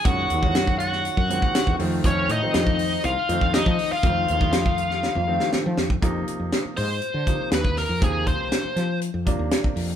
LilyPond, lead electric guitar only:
\new Staff \with { instrumentName = "Lead electric guitar" } { \time 4/4 \key f \phrygian \tempo 4 = 120 ges''4. ges''2 r8 | des''8 ees''4. f''4 ees''8. f''16~ | f''2. r4 | \key f \dorian r4. c''4. b'8 bes'8 |
aes'8 c''4. r2 | }